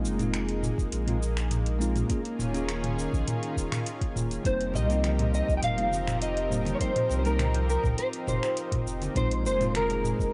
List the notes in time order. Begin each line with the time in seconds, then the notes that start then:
Already playing: G#3 A#3 C4 D#4 F4
0.04 F1, cabasa
0.16 G#3 C4, closed hi-hat, mid tom
0.20 D#4 F4, cabasa
0.33 finger snap, closed hi-hat, cabasa
0.49 closed hi-hat
0.63 mid tom, cabasa
0.78 F1, kick, cabasa
0.92 A#1, closed hi-hat, cabasa
1.06 G#3 C4 D#4 F4, closed hi-hat, mid tom
1.22 cabasa
1.37 finger snap, cabasa
1.51 closed hi-hat, mid tom, cabasa
1.66 closed hi-hat
1.79 G#3 C4 D#4 F4, cabasa
1.96 closed hi-hat, mid tom, cabasa
2.08 D#3 A#3 C#4 F4 G#4, kick, closed hi-hat, cabasa
2.25 closed hi-hat
2.39 D#1, mid tom, cabasa
2.53 A#3 C#4 F4 G#4, closed hi-hat, cabasa
2.69 finger snap, closed hi-hat, cabasa
2.84 closed hi-hat, mid tom
2.99 cabasa
3.13 A#1, kick, cabasa
3.28 closed hi-hat, mid tom, cabasa
3.43 closed hi-hat
3.57 D#1, kick, cabasa
3.72 finger snap, mid tom, cabasa
3.86 closed hi-hat, cabasa
4.01 kick, closed hi-hat
4.16 D#1, mid tom, cabasa
4.31 closed hi-hat, cabasa
4.43 F1 F3 G3 A#3 C4 D#4 G4 A#4 C5, kick, closed hi-hat, cabasa
4.61 closed hi-hat
4.74 C2 D#5, mid tom, muted conga, cabasa
4.87 G3 A#3, closed hi-hat, cabasa
4.91 C4 D#4
5.03 finger snap, closed hi-hat, high conga, cabasa
5.19 closed hi-hat, mid tom, low conga
5.34 D#5, cabasa
5.49 C2, kick, cabasa
5.57 G5
5.63 F1 F5, closed hi-hat, mid tom, cabasa
5.77 G3 A#3 C4 D#4, closed hi-hat
5.92 high conga, cabasa
6.07 finger snap, mid tom, cabasa
6.22 D#5, closed hi-hat, cabasa
6.37 closed hi-hat
6.50 G3 A#3 C4 D#4, mid tom, muted conga, cabasa
6.65 closed hi-hat, high conga, cabasa
6.75 C#5
6.79 G3 A#3 C4 D#4 C5, kick, closed hi-hat, cabasa
6.96 closed hi-hat, mid tom
7.10 C2, muted conga, cabasa
7.19 C5
7.24 G3 A#3 C4 D#4 A#4, closed hi-hat, cabasa
7.39 finger snap, closed hi-hat, mid tom, high conga, cabasa
7.55 closed hi-hat, low conga
7.70 A#4, cabasa
7.84 C2, kick, mid tom, muted conga, cabasa
7.98 C5, closed hi-hat, cabasa
8.13 closed hi-hat
8.27 F1 C5, mid tom, high conga, cabasa
8.43 finger snap, cabasa
8.57 closed hi-hat, cabasa
8.72 kick, closed hi-hat, mid tom
8.86 F1, cabasa
9.02 closed hi-hat, high conga, cabasa
9.14 A#1 G#3 A#3 C4 D#4 F4 C5, kick, closed hi-hat, mid tom, cabasa
9.31 closed hi-hat
9.45 F1 C5, muted conga, cabasa
9.57 G#3 C4, closed hi-hat, mid tom
9.62 D#4 F4, cabasa
9.75 A#4, finger snap, closed hi-hat, high conga, cabasa
9.90 closed hi-hat, low conga
10.04 mid tom, cabasa
10.19 F1, kick, cabasa